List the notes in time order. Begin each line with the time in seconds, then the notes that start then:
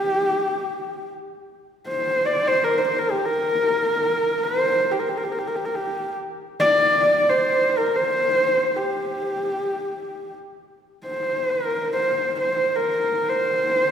Already playing: G4
1.88 C5
2.26 D5
2.47 C5
2.64 A#4
2.78 C5
2.87 C5
2.99 A#4
3.11 G4
3.25 A#4
4.44 C5
4.91 G4
4.99 A#4
5.09 G4
5.17 A#4
5.24 G4
5.32 A#4
5.38 G4
5.47 A#4
5.55 G4
5.65 A#4
5.75 G4
6.60 D5
7.29 C5
7.77 A#4
7.96 C5
8.76 G4
11.06 C5
11.49 A#4
11.92 C5
12.41 C5
12.75 A#4
13.29 C5